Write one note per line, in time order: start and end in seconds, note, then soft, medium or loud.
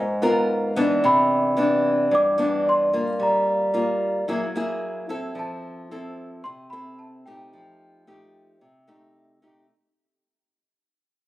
0.00 1.01 G#2 medium
0.00 0.47 G#5 medium
0.22 0.72 B3 soft
0.22 0.72 F4 medium
0.22 0.73 A#4 medium
0.76 1.54 E3 soft
0.76 1.54 B3 medium
0.76 1.54 D4 medium
1.04 2.09 C3 medium
1.04 2.16 B5 medium
1.57 2.34 E3 soft
1.57 2.35 B3 soft
1.57 2.35 D4 medium
2.11 3.17 G2 medium
2.11 2.69 D6 medium
2.38 2.88 E3 medium
2.38 2.89 B3 soft
2.38 2.89 D4 medium
2.69 3.23 C6 medium
2.93 3.70 A#3 medium
2.93 3.70 F4 medium
3.20 4.26 G3 medium
3.20 5.07 A#5 medium
3.74 4.26 A#3 soft
3.74 4.26 F4 medium
4.28 5.34 F#3 medium
4.28 4.45 A#3 soft
4.28 4.44 E4 medium
4.28 4.45 G#4 medium
4.56 5.05 A#3 medium
4.56 5.06 E4 medium
4.56 5.06 G#4 medium
5.09 5.86 C4 medium
5.09 5.87 E4 soft
5.09 5.87 A4 medium
5.35 6.41 F3 medium
5.39 6.49 A5 medium
5.91 6.45 C4 soft
5.91 6.45 E4 soft
5.91 6.45 A4 medium
6.44 7.51 C3 medium
6.44 6.70 C6 loud
6.70 7.22 C4 medium
6.70 7.22 E4 medium
6.70 7.22 A4 medium
6.70 6.99 B5 medium
6.99 7.27 A5 medium
7.26 8.03 A3 medium
7.26 8.04 D#4 medium
7.26 8.04 G4 medium
7.26 9.11 G5 medium
7.53 8.59 F3 medium
8.07 8.61 A3 medium
8.07 8.61 D#4 medium
8.07 8.61 G4 medium
8.61 9.67 C3 medium
8.88 9.38 A3 medium
8.88 9.38 D#4 medium
8.88 9.38 G4 medium
9.42 9.65 A3 medium
9.42 9.65 D#4 soft
9.42 9.65 G4 medium